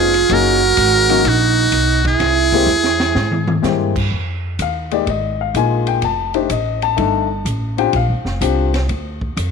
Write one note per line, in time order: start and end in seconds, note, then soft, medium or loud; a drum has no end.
0.00 0.28 F1 medium
0.00 0.11 F3 medium
0.00 0.11 B3 medium
0.00 0.11 C#4 medium
0.00 0.11 D#4 medium
0.00 0.32 F4 medium
0.00 0.11 G#4 medium
0.00 0.35 G#4 loud
0.14 ride medium
0.29 0.76 F#1 medium
0.29 0.59 F#3 medium
0.29 0.59 A#3 medium
0.29 0.59 C#4 medium
0.29 0.59 D#4 medium
0.29 1.28 F#4 medium
0.29 0.59 G#4 medium
0.29 1.30 A#4 loud
0.29 kick soft
0.29 ride medium
0.77 1.23 G#1 medium
0.77 kick soft
0.77 hi-hat pedal medium
0.77 ride medium
1.09 1.23 F#3 medium
1.09 1.23 A#3 medium
1.09 1.23 C#4 medium
1.09 1.24 D#4 medium
1.09 1.24 F#4 medium
1.09 ride soft
1.24 1.71 A#1 medium
1.24 2.05 D#4 medium
1.24 2.07 F#4 loud
1.24 kick soft
1.24 ride medium
1.72 2.18 B1 medium
1.72 kick soft
1.72 hi-hat pedal soft
1.72 ride medium
2.05 3.60 E4 medium
2.05 3.61 G#4 loud
2.05 kick medium
2.05 ride soft
2.20 2.66 C2 medium
2.20 kick soft
2.20 snare soft
2.20 ride medium
2.52 2.67 G#3 medium
2.52 2.67 A#3 medium
2.52 2.67 C4 medium
2.52 2.67 E4 medium
2.52 2.67 G4 medium
2.52 kick medium
2.66 3.13 E2 medium
2.66 hi-hat pedal medium
2.84 snare soft
3.00 snare medium
3.15 3.62 G#2 medium
3.15 snare medium
3.31 mid tom medium
3.47 mid tom loud
3.62 4.09 G2 medium
3.62 3.92 G#3 medium
3.62 3.92 A#3 medium
3.62 3.92 C4 medium
3.62 3.92 E4 medium
3.62 3.92 G4 medium
3.62 snare medium
3.62 hi-hat pedal soft
3.96 kick medium
3.96 crash medium
4.11 4.57 F2 medium
4.11 kick soft
4.59 5.05 D#2 medium
4.59 4.92 F5 medium
4.59 kick soft
4.59 hi-hat pedal soft
4.59 ride medium
4.91 5.05 G#3 medium
4.91 5.05 A#3 medium
4.91 5.05 D#4 medium
4.91 5.06 G4 medium
4.91 5.07 D5 medium
4.91 ride soft
5.07 5.53 G#1 medium
5.07 5.40 D#5 medium
5.07 kick soft
5.07 ride medium
5.41 5.55 F5 medium
5.54 6.01 A#1 medium
5.54 6.03 G#3 medium
5.54 6.03 A#3 medium
5.54 6.03 D#4 medium
5.54 6.03 F4 medium
5.54 5.87 G#5 medium
5.54 kick soft
5.54 hi-hat pedal medium
5.54 ride medium
5.87 6.02 G5 medium
5.87 ride soft
6.02 6.48 F1 medium
6.02 6.35 A5 medium
6.02 kick soft
6.02 ride medium
6.34 6.48 A3 medium
6.34 6.48 D4 medium
6.34 6.48 D#4 medium
6.34 6.48 G4 medium
6.34 6.50 C5 medium
6.34 ride soft
6.50 6.96 A1 medium
6.50 6.82 D#5 medium
6.50 kick soft
6.50 hi-hat pedal soft
6.50 ride medium
6.82 7.42 A5 medium
6.82 ride soft
6.97 7.44 G1 medium
6.97 7.26 A3 medium
6.97 7.26 D4 medium
6.97 7.27 D#4 medium
6.97 7.27 A4 medium
6.97 kick soft
6.97 ride medium
7.45 7.92 A1 medium
7.45 kick soft
7.45 hi-hat pedal medium
7.45 ride medium
7.77 7.91 C4 medium
7.77 7.92 D4 medium
7.77 7.92 F4 medium
7.77 7.92 G4 medium
7.77 7.93 G5 medium
7.77 ride soft
7.93 8.10 A#1 medium
7.93 8.39 F5 medium
7.93 kick soft
7.93 ride medium
8.09 8.24 G1 medium
8.25 8.40 F1 medium
8.25 snare soft
8.41 8.87 C2 medium
8.41 8.70 C4 medium
8.41 8.70 D4 medium
8.41 8.70 F4 medium
8.41 8.71 G4 medium
8.41 kick soft
8.41 hi-hat pedal medium
8.41 ride medium
8.74 snare medium
8.74 ride soft
8.89 9.35 D2 medium
8.89 kick soft
8.89 ride medium
9.21 kick medium
9.36 9.51 F2 medium
9.36 kick soft
9.36 hi-hat pedal soft
9.36 ride medium